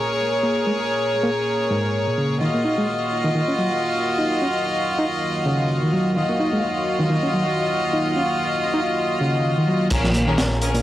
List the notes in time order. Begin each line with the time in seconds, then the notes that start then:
Already playing: A#2 A#3 G#4 A#4 C#5
0.43 A#3
0.67 G#3
1.24 A#3
1.71 G#2
2.07 A#2
2.18 C#3
2.41 D#3 F#3 F4 F#4 D#5 F5
2.54 A#3
2.65 D#4
2.78 G#3
3.25 D#3
3.35 D#3
3.48 C#4
3.58 F#3
4.19 D#4
4.42 C#4
4.99 D#4
5.46 C#3
5.83 D#3
5.93 F#3
6.16 D#3 F4 F#4 D#5
6.29 A#3
6.40 D#4
6.53 G#3
7.00 D#3
7.10 D#3
7.23 C#4
7.33 F#3
7.93 D#4
8.17 C#4
8.74 D#4
9.21 C#3
9.57 D#3
9.67 F#3
9.90 A#1 A#2 A#3 C#4 F4 G#4 A#4 C#5, kick, closed hi-hat, crash
10.04 F3, snare
10.14 A#3, closed hi-hat
10.27 D#3 C#4 G#4 A#4
10.38 snare, closed hi-hat
10.61 C#4 G#4 A#4, closed hi-hat
10.74 A#2, closed hi-hat